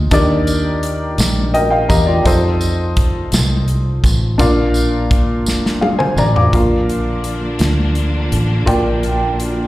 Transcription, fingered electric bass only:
0.11 D#2
1.18 A#1
1.89 E2
2.25 F2
3.33 C2
4.03 A1
4.40 A#1
5.45 F1
6.16 A1
6.53 A#1
7.60 D2
8.32 A1
8.67 A#1

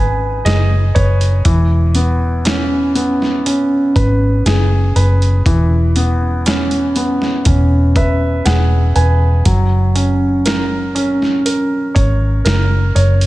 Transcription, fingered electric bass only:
Already playing: G#1
0.45 F#1
0.95 F#1
1.45 E1
3.96 G#1
4.46 F#1
4.96 F#1
5.46 E1
7.46 E1
8.45 E1
8.96 E1
9.45 F#1
11.96 G#1
12.45 F#1
12.95 F#1

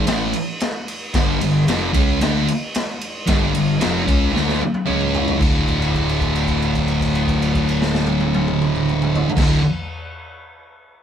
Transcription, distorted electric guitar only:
0.07 A2 E3 A3
1.15 G2 D3 G3
1.41 G2 D3
1.68 F2 C3 F3
1.93 C#3 G#3 C#4
2.20 D3 A3 D4
3.26 G2 D3 G3
3.53 G2 D3
3.79 F2 C3 F3
4.05 C#3 G#3 C#4
4.31 D3 A3 D4
4.86 C#3 G#3 C#4
5.37 D2 A2
5.41 D3
9.36 D2 A2
9.40 D3

